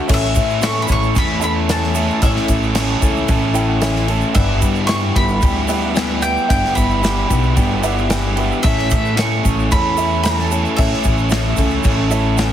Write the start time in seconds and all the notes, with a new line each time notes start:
0.07 A1 A2 E3 A3 C#4 E4 A4 C#5 E5, kick, crash, shaker
0.14 E5
0.24 snare
0.35 A2 A3 C#4 E4, kick, crash, shaker
0.50 shaker
0.60 A2 E3 A3 C#4 E4 A4 C#6, snare, crash, shaker
0.82 B5
0.86 A1 A3 C#4 E4 A4, kick, crash, shaker
0.92 C#6
1.03 shaker
1.14 E2 E3 A3 C#4 E4 A4, kick, crash, shaker
1.18 B5
1.40 C#4 E4 A4 C#5 E5, crash, shaker
1.44 A3 B5
1.69 A2 E3 A3 C#4 E4 A5, snare, crash, shaker
1.83 snare
1.95 A3 C#4 E4 A4, crash, shaker
2.10 shaker
2.22 A1 A2 E3 A3 C#4 E4 A4 C#5 E5, kick, crash, shaker
2.36 snare
2.48 A1 A3 C#4 E4, kick, crash, shaker
2.63 shaker
2.75 A2 E3 A3 C#4 E4 A4, snare, crash, shaker
3.01 C#2 A3 C#4 E4 A4, kick, crash, shaker
3.17 shaker
3.28 A1 E3 A3 C#4 E4 A4, kick, crash, shaker
3.54 A3 C#4 E4 A4 C#5 G5, crash, shaker
3.67 F#5
3.80 A2 E3 A3 C#4 E4 E5, snare, crash, shaker
3.96 snare
4.08 A3 C#4 E4 A4, crash
4.21 shaker
4.33 G1 G2 D3 E3 G3 B3 D4 E4 G4 B4 D5 E5, kick, crash, shaker
4.61 G2 E3 G3 B3 E4, kick, crash, shaker
4.75 shaker
4.87 G2 D3 E3 G3 B3 D4 E4 G4 C#6, snare, crash, shaker
5.14 G1 E3 G3 B3 D4 E4 G4 B5, kick, crash
5.28 shaker
5.41 D2 E3 G3 B3 D4 E4 G4, kick, crash, shaker
5.68 E3 G3 B3 D4 E4 G4 B4 D5 E5, crash, shaker
5.94 G2 D3 E3 G3 B3 E4, snare, crash, shaker
6.22 E3 G3 B3 D4 E4 G4 G5, crash, shaker
6.37 shaker
6.48 G1 G2 D3 E3 G3 B3 D4 E4 G4 B4 D5 E5 G5, kick, crash, shaker
6.65 snare
6.75 G1 E3 G3 B3 E4 B5, kick, crash, shaker
6.91 shaker
7.01 G2 D3 E3 G3 B3 D4 E4 G4, snare, crash, shaker
7.28 B1 E3 G3 B3 D4 E4 G4, kick, crash, shaker
7.43 shaker
7.56 G1 E3 G3 B3 D4 E4 G4, kick, crash, shaker
7.82 E3 G3 B3 D4 E4 G4 B4 D5 E5 F#5, crash, shaker
7.98 shaker
8.10 G2 D3 E3 G3 B3 E4 G5, snare, crash, shaker
8.36 G3 B3 D4 E4 G4 B5, crash
8.40 E3
8.52 shaker
8.63 A1 A2 E3 A3 C#4 E4 A4 C#5 E5, kick, crash, shaker
8.79 snare
8.91 A2 A3 C#4 E4 E5, kick, crash, shaker
9.05 shaker
9.17 A2 E3 A3 C#4 E4 A4 C#6, snare, crash, shaker
9.43 A1 A3 C#4 E4 A4, kick, crash, shaker
9.59 shaker
9.71 E2 E3 A3 C#4 E4 A4 B5, kick, crash, shaker
9.97 A3 C#4 E4 A4 C#5 E5, crash, shaker
10.23 A2 E3 A3 C#4 E4 A5, snare, crash, shaker
10.39 snare
10.51 A3 C#4 E4 A4, crash, shaker
10.65 shaker
10.77 A1 A2 E3 A3 C#4 E4 A4 C#5 E5, kick, crash, shaker
10.93 snare
11.04 A1 A3 C#4 E4, kick, crash, shaker
11.18 shaker
11.29 A2 E3 A3 C#4 E4, snare, crash, shaker
11.34 A4
11.57 C#2 A3 C#4 E4 A4, kick, crash, shaker
11.70 shaker
11.82 A1 E3 A3 C#4 E4 A4, kick, crash, shaker
12.09 A3 C#4 E4 A4 C#5 E5 A5, crash, shaker
12.36 A2 E3 A3 C#4 E4 F#5, snare, crash, shaker